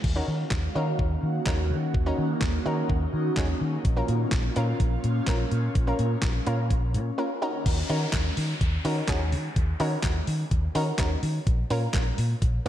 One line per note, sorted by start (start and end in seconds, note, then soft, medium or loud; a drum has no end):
0.04 0.19 D#2 loud
0.04 3.81 D#3 medium
0.04 7.62 A#3 medium
0.04 3.81 C#4 medium
0.04 3.81 F#4 medium
0.04 1.93 F5 medium
0.04 kick loud
0.04 crash medium
0.16 0.51 C#4 medium
0.16 0.51 D#4 medium
0.16 0.51 F#4 medium
0.16 0.51 A#4 medium
0.28 0.43 D#3 medium
0.51 0.67 D#2 loud
0.51 kick loud
0.51 snare medium
0.51 clap loud
0.75 0.91 D#3 loud
0.75 1.17 C#4 medium
0.75 1.17 D#4 medium
0.75 1.17 F#4 medium
0.75 1.18 A#4 loud
0.99 1.15 D#2 loud
0.99 kick loud
1.23 1.38 D#3 loud
1.46 1.72 D#2 loud
1.46 1.82 C#4 medium
1.46 1.82 D#4 medium
1.46 1.82 F#4 medium
1.46 1.82 A#4 loud
1.46 kick loud
1.46 snare medium
1.46 clap loud
1.71 1.86 D#3 medium
1.94 2.10 D#2 loud
1.94 3.83 D#4 medium
1.94 kick loud
2.06 2.41 C#4 medium
2.06 2.41 D#4 medium
2.06 2.41 F#4 medium
2.06 2.41 A#4 loud
2.18 2.34 D#3 medium
2.41 2.57 D#2 medium
2.41 kick loud
2.41 snare medium
2.41 clap loud
2.66 2.81 D#3 loud
2.66 3.08 C#4 medium
2.66 3.08 D#4 medium
2.66 3.08 F#4 medium
2.66 3.08 A#4 loud
2.90 3.05 D#2 loud
2.90 kick medium
3.13 3.29 D#3 medium
3.36 3.53 D#2 loud
3.36 3.72 C#4 medium
3.36 3.72 D#4 medium
3.36 3.72 F#4 medium
3.36 3.72 G#4 medium
3.36 kick loud
3.36 snare medium
3.36 clap loud
3.61 3.77 D#3 loud
3.85 4.00 A#1 loud
3.85 7.38 C#4 medium
3.85 7.62 F4 medium
3.85 kick loud
3.85 closed hi-hat medium
3.96 4.32 A#3 medium
3.96 4.32 C#4 medium
3.96 4.32 F4 medium
3.96 4.32 A#4 medium
4.08 4.24 A#2 loud
4.08 closed hi-hat medium
4.31 4.48 A#1 medium
4.31 kick loud
4.31 snare medium
4.31 clap loud
4.31 closed hi-hat medium
4.56 4.72 A#2 loud
4.56 4.98 A#3 medium
4.56 4.98 C#4 medium
4.56 4.98 F4 medium
4.56 4.98 A#4 medium
4.56 closed hi-hat medium
4.80 4.96 A#1 loud
4.80 kick loud
4.80 closed hi-hat medium
5.04 5.19 A#2 loud
5.04 closed hi-hat medium
5.27 5.43 A#1 loud
5.27 5.63 A#3 medium
5.27 5.63 C#4 medium
5.27 5.63 F4 medium
5.27 5.63 A#4 loud
5.27 kick loud
5.27 snare medium
5.27 clap loud
5.27 closed hi-hat medium
5.51 5.67 A#2 loud
5.51 closed hi-hat medium
5.75 5.91 A#1 loud
5.75 kick loud
5.75 closed hi-hat medium
5.87 6.22 A#3 medium
5.87 6.22 C#4 medium
5.87 6.22 F4 medium
5.87 6.22 A#4 loud
5.99 6.15 A#2 loud
5.99 closed hi-hat medium
6.22 6.38 A#1 loud
6.22 kick loud
6.22 snare medium
6.22 clap loud
6.22 closed hi-hat medium
6.46 6.72 A#2 loud
6.46 6.89 A#3 medium
6.46 6.89 C#4 medium
6.46 6.89 F4 medium
6.46 6.89 A#4 loud
6.46 closed hi-hat medium
6.71 6.96 A#1 loud
6.71 kick loud
6.71 closed hi-hat medium
6.94 7.10 A#2 loud
6.94 closed hi-hat medium
7.18 7.42 A#3 medium
7.18 7.41 C#4 medium
7.18 7.42 F4 medium
7.18 7.41 A#4 medium
7.42 7.61 C#4 medium
7.42 7.61 D#4 medium
7.42 7.61 F#4 medium
7.42 7.61 A#4 loud
7.66 7.81 D#2 loud
7.66 kick loud
7.66 closed hi-hat medium
7.66 crash loud
7.66 downlifter medium
7.89 8.05 D#3 medium
7.89 8.46 C#4 loud
7.89 8.46 D#4 medium
7.89 8.46 F#4 medium
7.89 8.46 A#4 loud
7.89 open hi-hat medium
8.12 8.29 D#2 loud
8.12 kick loud
8.12 snare medium
8.12 clap loud
8.12 clap medium
8.12 closed hi-hat medium
8.37 8.53 D#3 loud
8.37 open hi-hat medium
8.61 8.76 D#2 loud
8.61 kick loud
8.61 closed hi-hat medium
8.85 9.00 D#3 loud
8.85 8.99 C#4 loud
8.85 8.99 D#4 medium
8.85 8.99 F#4 medium
8.85 8.99 A#4 loud
8.85 open hi-hat medium
9.08 9.34 D#2 loud
9.08 9.51 C#4 medium
9.08 9.51 D#4 medium
9.08 9.51 F#4 medium
9.08 9.51 G#4 medium
9.08 kick loud
9.08 snare medium
9.08 clap loud
9.08 clap medium
9.08 closed hi-hat medium
9.32 9.48 D#3 medium
9.32 open hi-hat medium
9.56 9.72 D#2 loud
9.56 kick loud
9.56 closed hi-hat medium
9.80 9.95 D#3 medium
9.80 10.36 C#4 loud
9.80 10.36 D#4 medium
9.80 10.36 F#4 medium
9.80 10.36 A#4 loud
9.80 open hi-hat medium
10.03 10.19 D#2 loud
10.03 kick loud
10.03 snare medium
10.03 clap loud
10.03 clap medium
10.03 closed hi-hat medium
10.27 10.43 D#3 loud
10.27 open hi-hat medium
10.51 10.67 D#2 loud
10.51 kick loud
10.51 closed hi-hat medium
10.75 10.91 D#3 loud
10.75 10.89 C#4 loud
10.75 10.89 D#4 medium
10.75 10.89 F#4 medium
10.75 10.89 A#4 loud
10.75 open hi-hat medium
10.98 11.15 D#2 loud
10.98 11.41 C#4 medium
10.98 11.41 D#4 medium
10.98 11.41 F#4 medium
10.98 11.41 A#4 medium
10.98 kick loud
10.98 snare medium
10.98 clap loud
10.98 clap medium
10.98 closed hi-hat medium
11.23 11.38 D#3 loud
11.23 open hi-hat medium
11.47 11.62 A#1 loud
11.47 kick loud
11.47 closed hi-hat medium
11.70 11.86 A#2 loud
11.70 12.26 A#3 loud
11.70 12.26 C#4 medium
11.70 12.27 F4 medium
11.70 12.27 A#4 loud
11.70 open hi-hat medium
11.93 12.10 A#1 loud
11.93 kick loud
11.93 snare medium
11.93 clap loud
11.93 clap medium
11.93 closed hi-hat medium
12.18 12.34 A#2 loud
12.18 open hi-hat medium
12.42 12.57 A#1 loud
12.42 kick loud
12.42 closed hi-hat medium